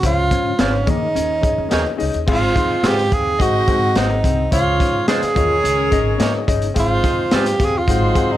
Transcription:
0.03 C#2 C#3 C#4 F4 C5 F5, kick, closed hi-hat
0.31 G#2 C#4 C5 F5, kick, closed hi-hat
0.58 G#1 C4 C#4 F4 G#4 C5 F5, snare, closed hi-hat
0.86 D#3 A#3 C#4 G#4 D#5, kick, closed hi-hat
0.90 D#4
1.15 D#2 C#4, closed hi-hat
1.41 C#4 G#4 D#5, muted upright bass stroke, kick, closed hi-hat
1.58 F2
1.69 D#2 A#3 C#4 D#4 G#4 D#5, snare, closed hi-hat
1.73 C#5
1.97 C#2 C#4 D#4 G#4 D#5, open hi-hat
2.14 D#2, closed hi-hat
2.27 G#1 G#2 C4 F4 G#4 C5 F5, kick, crash
2.31 F4
2.54 D#2 C4 D#4 G#4 F5, kick, closed hi-hat
2.83 G#2 C4 F4 G#4 C5 F5, snare, closed hi-hat
2.87 G4
2.98 snare
3.11 D#2 C4 G4 G#4 F5, kick, closed hi-hat
3.39 G#1 G#2 C4 D#4 F#4 G#4 C5 D#5 F#5, kick, closed hi-hat
3.68 G#2 C4 G#4 F#5, kick, closed hi-hat
3.96 G#1 G#3 A#3 C4 D#4 F#4 G#4 C5 F#5, snare, closed hi-hat
4.23 C2 C4 G#4 F#5, kick, closed hi-hat
4.51 C#2 C#3 C#4 F4 G#4 C5 C#5 F5, kick, closed hi-hat
4.78 G#2 C#4 C5 F5, kick, closed hi-hat
5.07 G#3 C#4 D#4 F4 G#4 C5 F5, snare, closed hi-hat
5.22 muted upright bass stroke, snare, closed hi-hat
5.35 D#2 D#3 C#4 F4 G#4 A#4 C#5 D#5, kick, closed hi-hat
5.63 C#2 C#4, closed hi-hat
5.91 G#1 C#4 G#4 D#5, kick, closed hi-hat
6.18 G#2 A#3 C#4 D#4 G#4 D#5, snare, closed hi-hat
6.23 C#5
6.47 G1 C#4 D#4 G#4 D#5, kick, closed hi-hat
6.62 closed hi-hat
6.74 G#1 G#2 C4 F4 G#4 C5 F5, kick, closed hi-hat
6.80 F4
7.03 D#2 C4 D#4 G#4 F5, kick, closed hi-hat
7.31 G#2 C4 F4 G4 G#4 C5 F5, snare, closed hi-hat
7.46 snare, closed hi-hat
7.60 D#2 C4 G4 G#4 F5, kick, snare, closed hi-hat
7.64 G#4
7.78 F4
7.87 G#1 G#2 F#3 C4 D#4 G#4 C5 F#5, kick, closed hi-hat
8.15 G#2 C4 G#4 F#5, kick, closed hi-hat
8.32 D#4

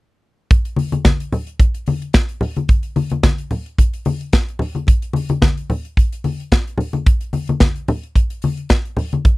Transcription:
0.51 kick, closed hi-hat
0.65 closed hi-hat
0.76 open hi-hat, muted conga, high conga
0.92 closed hi-hat, high conga
1.05 kick, snare, closed hi-hat, muted conga, high conga
1.20 closed hi-hat
1.32 open hi-hat, low conga
1.47 closed hi-hat
1.60 kick, closed hi-hat, muted conga
1.75 closed hi-hat
1.86 open hi-hat, muted conga, high conga
2.02 closed hi-hat
2.13 kick, snare, closed hi-hat, muted conga
2.29 closed hi-hat
2.41 open hi-hat, low conga
2.56 closed hi-hat, high conga
2.69 kick, closed hi-hat
2.83 closed hi-hat
2.96 open hi-hat, high conga
3.10 closed hi-hat, high conga
3.23 kick, snare, closed hi-hat, high conga
3.38 closed hi-hat
3.51 open hi-hat, muted conga, low conga
3.66 closed hi-hat
3.78 kick, closed hi-hat, muted conga
3.93 closed hi-hat
4.05 open hi-hat, muted conga, high conga
4.21 closed hi-hat
4.33 kick, snare, closed hi-hat, muted conga
4.48 closed hi-hat
4.59 open hi-hat, muted conga, low conga
4.75 closed hi-hat, high conga
4.87 kick, closed hi-hat, muted conga
5.02 closed hi-hat
5.13 open hi-hat, muted conga, high conga
5.29 closed hi-hat, high conga
5.42 kick, snare, closed hi-hat, muted conga, high conga
5.57 closed hi-hat
5.70 open hi-hat, muted conga, low conga
5.85 closed hi-hat
5.97 kick, closed hi-hat
6.12 closed hi-hat
6.24 open hi-hat, high conga
6.40 closed hi-hat
6.52 kick, snare, closed hi-hat, muted conga
6.67 closed hi-hat
6.78 open hi-hat, low conga
6.93 closed hi-hat, high conga
7.06 kick, closed hi-hat, muted conga
7.21 closed hi-hat
7.33 open hi-hat, muted conga, high conga
7.47 closed hi-hat, high conga
7.60 kick, snare, closed hi-hat, high conga
7.75 closed hi-hat
7.88 open hi-hat, muted conga, low conga
8.03 closed hi-hat
8.15 kick, closed hi-hat
8.30 closed hi-hat
8.42 open hi-hat, high conga
8.57 closed hi-hat
8.69 kick, snare, closed hi-hat, muted conga
8.85 closed hi-hat
8.97 open hi-hat, low conga
9.12 closed hi-hat, high conga
9.25 kick, closed hi-hat, muted conga

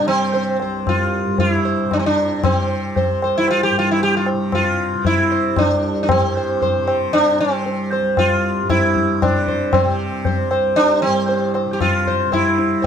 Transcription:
Already playing: C2 G2
0.00 C3
0.07 C4, tabla na
0.34 C5, tabla tin
0.60 C2 C5, tabla na
0.87 F4, tabla na, tabla ge
1.25 G2
1.38 F4, tabla tin, tabla ge
1.52 E4
1.65 C5
1.85 C3
1.91 D4, tabla na, tabla ge
1.99 C4
2.06 D4
2.44 C3 C4, tabla na, tabla ge
2.96 C5, tabla tin, tabla ge
3.08 C2
3.22 C5, tabla na
3.38 E4
3.48 F4, tabla na
3.63 G4
3.70 G2
3.79 F4
3.91 E4
4.01 G4, tabla tin
4.17 F4
4.26 tabla na
4.33 C3
4.52 F4, tabla na, tabla ge
4.94 C3
5.05 E4, tabla tin, tabla ge
5.31 C5
5.56 C2 D4, tabla na, tabla ge
6.03 D4
6.09 C4, tabla na, tabla ge
6.17 G2
6.37 C5
6.62 C5, tabla tin, tabla ge
6.78 C3
6.87 C5, tabla na
7.13 D4, tabla na
7.39 C3 C4
7.66 tabla tin
7.92 C5, tabla na
8.01 C2
8.17 F4, tabla na, tabla ge
8.63 G2
8.70 E4, tabla na, tabla ge
8.96 tabla ge
9.22 C3 D4, tabla na, tabla ge
9.48 C5, tabla ge
9.73 C4, tabla na, tabla ge
9.85 C3
10.25 C5, tabla tin, tabla ge
10.47 C2 C5, tabla na
10.76 D4, tabla na
11.02 C4
11.07 G2
11.28 C5, tabla tin
11.54 C5, tabla na
11.66 C3
11.73 G4
11.81 F4, tabla na, tabla ge
12.07 C5, tabla ge
12.27 C3
12.32 E4 C5, tabla na, tabla ge
12.58 tabla te
12.82 C5

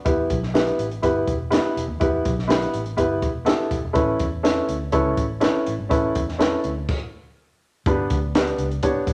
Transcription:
0.05 E2 B3 E4 G4 B4, kick, closed hi-hat
0.30 B1, kick, closed hi-hat
0.43 snare
0.54 B3 E4 G4 B4, snare, closed hi-hat
0.67 closed hi-hat
0.79 A1, closed hi-hat
0.91 closed hi-hat
1.02 G1 B3 E4 G4 B4, kick, closed hi-hat
1.27 E1, kick, closed hi-hat
1.50 B3 E4 G4 B4, snare, closed hi-hat
1.76 E1, closed hi-hat
1.88 D#2
2.00 E2 B3 E4 G4 B4, kick, closed hi-hat
2.25 B1, kick, closed hi-hat
2.39 snare
2.47 B3 E4 G4 B4, snare, closed hi-hat
2.62 closed hi-hat
2.74 A1, closed hi-hat
2.86 closed hi-hat
2.97 G1 B3 E4 G4 B4, kick, closed hi-hat
3.22 E1, kick, closed hi-hat
3.45 B3 E4 G4 A4, snare, closed hi-hat
3.71 E1, kick, closed hi-hat
3.84 E1
3.93 A1 C#4 E4 A4 B4, kick, closed hi-hat
4.19 E2, kick, closed hi-hat
4.43 C#4 E4 A4 B4, snare, closed hi-hat
4.69 D2, closed hi-hat
4.92 C#2 C#4 E4 A4 B4, kick, closed hi-hat
5.17 A1, kick, closed hi-hat
5.40 C#4 E4 A4 B4, snare, closed hi-hat
5.66 A1, closed hi-hat
5.79 G#1
5.89 A1 C#4 E4 A4 B4, kick, closed hi-hat
6.15 E2, kick, closed hi-hat
6.29 snare
6.39 C#4 E4 A4 B4, snare, closed hi-hat
6.64 D2, closed hi-hat
6.89 kick, crash
7.86 G1 B3 D4 G4 B4, kick, closed hi-hat
8.10 D2, kick, closed hi-hat
8.35 B3 D4 G4 B4, snare, closed hi-hat
8.47 closed hi-hat
8.58 C#2, closed hi-hat
8.71 closed hi-hat
8.83 B3 D4 G4 C#5, kick, closed hi-hat
8.95 muted fingered electric bass stroke
9.07 B1, kick, closed hi-hat

